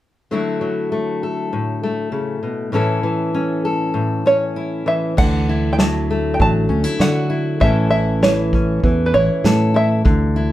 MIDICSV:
0, 0, Header, 1, 5, 480
1, 0, Start_track
1, 0, Key_signature, 2, "major"
1, 0, Tempo, 608519
1, 248, Time_signature, 4, 2, 24, 8
1, 8300, End_track
2, 0, Start_track
2, 0, Title_t, "Five-string banjo"
2, 0, Program_c, 0, 105
2, 3367, Note_on_c, 0, 73, 74
2, 3844, Note_off_c, 0, 73, 0
2, 3847, Note_on_c, 0, 76, 73
2, 4084, Note_off_c, 0, 76, 0
2, 4088, Note_on_c, 0, 78, 81
2, 4515, Note_off_c, 0, 78, 0
2, 4518, Note_on_c, 0, 79, 61
2, 4569, Note_off_c, 0, 79, 0
2, 4572, Note_on_c, 0, 81, 80
2, 4965, Note_off_c, 0, 81, 0
2, 5002, Note_on_c, 0, 79, 63
2, 5053, Note_off_c, 0, 79, 0
2, 5061, Note_on_c, 0, 81, 81
2, 5503, Note_off_c, 0, 81, 0
2, 5531, Note_on_c, 0, 78, 77
2, 6000, Note_off_c, 0, 78, 0
2, 6003, Note_on_c, 0, 76, 83
2, 6226, Note_off_c, 0, 76, 0
2, 6235, Note_on_c, 0, 76, 82
2, 6490, Note_off_c, 0, 76, 0
2, 6490, Note_on_c, 0, 73, 72
2, 7148, Note_on_c, 0, 71, 61
2, 7174, Note_off_c, 0, 73, 0
2, 7206, Note_off_c, 0, 71, 0
2, 7209, Note_on_c, 0, 73, 83
2, 7701, Note_on_c, 0, 76, 90
2, 7704, Note_off_c, 0, 73, 0
2, 8300, Note_off_c, 0, 76, 0
2, 8300, End_track
3, 0, Start_track
3, 0, Title_t, "Steel-string acoustic guitar"
3, 0, Program_c, 1, 25
3, 244, Note_on_c, 1, 50, 49
3, 247, Note_on_c, 1, 54, 43
3, 255, Note_on_c, 1, 57, 42
3, 259, Note_on_c, 1, 64, 39
3, 266, Note_on_c, 1, 66, 48
3, 471, Note_off_c, 1, 54, 0
3, 481, Note_on_c, 1, 54, 45
3, 722, Note_off_c, 1, 57, 0
3, 725, Note_on_c, 1, 57, 41
3, 968, Note_off_c, 1, 66, 0
3, 971, Note_on_c, 1, 69, 43
3, 1205, Note_on_c, 1, 45, 50
3, 1444, Note_off_c, 1, 57, 0
3, 1447, Note_on_c, 1, 57, 47
3, 1668, Note_off_c, 1, 50, 0
3, 1671, Note_on_c, 1, 49, 46
3, 1911, Note_off_c, 1, 49, 0
3, 1914, Note_on_c, 1, 47, 46
3, 2135, Note_off_c, 1, 54, 0
3, 2138, Note_off_c, 1, 45, 0
3, 2145, Note_on_c, 1, 45, 58
3, 2152, Note_on_c, 1, 52, 47
3, 2156, Note_off_c, 1, 57, 0
3, 2159, Note_on_c, 1, 61, 47
3, 2160, Note_off_c, 1, 64, 0
3, 2161, Note_off_c, 1, 47, 0
3, 2163, Note_on_c, 1, 64, 46
3, 2166, Note_off_c, 1, 69, 0
3, 2169, Note_on_c, 1, 69, 51
3, 2383, Note_off_c, 1, 52, 0
3, 2392, Note_on_c, 1, 52, 48
3, 2629, Note_off_c, 1, 61, 0
3, 2638, Note_on_c, 1, 61, 49
3, 2868, Note_off_c, 1, 69, 0
3, 2878, Note_on_c, 1, 69, 47
3, 3097, Note_off_c, 1, 45, 0
3, 3107, Note_on_c, 1, 45, 53
3, 3348, Note_off_c, 1, 61, 0
3, 3358, Note_on_c, 1, 61, 45
3, 3589, Note_off_c, 1, 64, 0
3, 3598, Note_on_c, 1, 64, 49
3, 3824, Note_off_c, 1, 52, 0
3, 3834, Note_on_c, 1, 52, 50
3, 4049, Note_off_c, 1, 45, 0
3, 4054, Note_off_c, 1, 61, 0
3, 4054, Note_off_c, 1, 64, 0
3, 4054, Note_off_c, 1, 69, 0
3, 4079, Note_on_c, 1, 50, 60
3, 4332, Note_on_c, 1, 64, 50
3, 4562, Note_off_c, 1, 52, 0
3, 4565, Note_on_c, 1, 54, 54
3, 4816, Note_on_c, 1, 57, 49
3, 5035, Note_off_c, 1, 54, 0
3, 5044, Note_on_c, 1, 54, 56
3, 5274, Note_off_c, 1, 64, 0
3, 5277, Note_on_c, 1, 61, 49
3, 5394, Note_off_c, 1, 61, 0
3, 5394, Note_on_c, 1, 64, 42
3, 5516, Note_on_c, 1, 66, 55
3, 5746, Note_off_c, 1, 64, 0
3, 5756, Note_on_c, 1, 64, 52
3, 5975, Note_off_c, 1, 50, 0
3, 5978, Note_off_c, 1, 54, 0
3, 5995, Note_on_c, 1, 45, 62
3, 6003, Note_off_c, 1, 66, 0
3, 6003, Note_on_c, 1, 52, 52
3, 6010, Note_off_c, 1, 57, 0
3, 6013, Note_on_c, 1, 61, 52
3, 6014, Note_off_c, 1, 64, 0
3, 6017, Note_on_c, 1, 64, 46
3, 6024, Note_on_c, 1, 69, 56
3, 6240, Note_off_c, 1, 64, 0
3, 6243, Note_on_c, 1, 64, 50
3, 6489, Note_off_c, 1, 52, 0
3, 6492, Note_on_c, 1, 52, 57
3, 6728, Note_off_c, 1, 61, 0
3, 6738, Note_on_c, 1, 61, 47
3, 6970, Note_off_c, 1, 52, 0
3, 6973, Note_on_c, 1, 52, 58
3, 7204, Note_off_c, 1, 64, 0
3, 7213, Note_on_c, 1, 64, 52
3, 7448, Note_off_c, 1, 69, 0
3, 7457, Note_on_c, 1, 69, 59
3, 7675, Note_off_c, 1, 64, 0
3, 7685, Note_on_c, 1, 64, 48
3, 7895, Note_off_c, 1, 45, 0
3, 7899, Note_off_c, 1, 64, 0
3, 7905, Note_off_c, 1, 69, 0
3, 7906, Note_off_c, 1, 61, 0
3, 7925, Note_on_c, 1, 50, 62
3, 8172, Note_on_c, 1, 64, 52
3, 8300, Note_off_c, 1, 50, 0
3, 8300, Note_off_c, 1, 52, 0
3, 8300, Note_off_c, 1, 64, 0
3, 8300, End_track
4, 0, Start_track
4, 0, Title_t, "Fretless electric bass"
4, 0, Program_c, 2, 35
4, 4087, Note_on_c, 2, 38, 78
4, 5016, Note_off_c, 2, 38, 0
4, 5048, Note_on_c, 2, 33, 82
4, 5276, Note_off_c, 2, 33, 0
4, 5282, Note_on_c, 2, 38, 77
4, 5399, Note_off_c, 2, 38, 0
4, 5519, Note_on_c, 2, 50, 82
4, 5980, Note_off_c, 2, 50, 0
4, 6006, Note_on_c, 2, 33, 81
4, 6937, Note_off_c, 2, 33, 0
4, 6970, Note_on_c, 2, 40, 80
4, 7198, Note_off_c, 2, 40, 0
4, 7208, Note_on_c, 2, 33, 75
4, 7323, Note_off_c, 2, 33, 0
4, 7448, Note_on_c, 2, 45, 83
4, 7905, Note_off_c, 2, 45, 0
4, 7931, Note_on_c, 2, 38, 85
4, 8300, Note_off_c, 2, 38, 0
4, 8300, End_track
5, 0, Start_track
5, 0, Title_t, "Drums"
5, 4085, Note_on_c, 9, 49, 65
5, 4088, Note_on_c, 9, 36, 74
5, 4164, Note_off_c, 9, 49, 0
5, 4167, Note_off_c, 9, 36, 0
5, 4564, Note_on_c, 9, 38, 77
5, 4643, Note_off_c, 9, 38, 0
5, 5047, Note_on_c, 9, 36, 59
5, 5126, Note_off_c, 9, 36, 0
5, 5522, Note_on_c, 9, 38, 75
5, 5601, Note_off_c, 9, 38, 0
5, 6006, Note_on_c, 9, 36, 77
5, 6084, Note_off_c, 9, 36, 0
5, 6489, Note_on_c, 9, 38, 79
5, 6568, Note_off_c, 9, 38, 0
5, 6728, Note_on_c, 9, 36, 55
5, 6807, Note_off_c, 9, 36, 0
5, 6970, Note_on_c, 9, 36, 61
5, 7048, Note_off_c, 9, 36, 0
5, 7450, Note_on_c, 9, 38, 82
5, 7529, Note_off_c, 9, 38, 0
5, 7931, Note_on_c, 9, 36, 74
5, 8010, Note_off_c, 9, 36, 0
5, 8300, End_track
0, 0, End_of_file